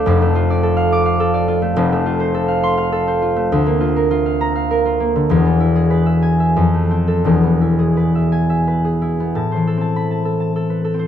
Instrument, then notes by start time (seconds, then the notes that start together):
harp
Already playing: A3 F4 A4 D5 F5 D6
0.06 F1 F2
0.22 A3
0.35 F4
0.50 D5
0.63 A4
0.77 F5
0.92 D6
1.06 F5
1.20 A4
1.34 D5
1.48 F4
1.62 A3
1.76 F1 F2
1.92 A3
2.06 F4
2.20 C5
2.34 A4
2.48 F5
2.63 C6
2.77 F5
2.92 A4
3.07 C5
3.22 F4
3.36 A3
3.52 D2
3.66 A#3
3.81 F4
3.96 A#4
4.11 F4
4.26 F5
4.41 A#5
4.56 F5
4.71 A#4
4.85 F4
5.00 A#3
5.16 D3
5.30 E1 E2
5.45 B3
5.60 E4
5.76 G#4
5.90 B4
6.06 E5
6.22 G#5
6.40 E5
6.56 F2
6.74 A3
6.91 C4
7.08 A4
7.25 E1 E2
7.43 B3
7.61 E4
7.79 G#4
7.97 B4
8.15 E5
8.32 G#5
8.50 E5
8.68 B4
8.85 G#4
9.02 E4
9.20 B3
9.35 A2 A5
9.52 C5
9.56 E3
9.67 A4
9.77 C4 A5
9.96 B5
10.11 A5
10.25 A4
10.40 A5
10.56 A4
10.70 B4
10.84 A4
10.94 C4
10.99 C5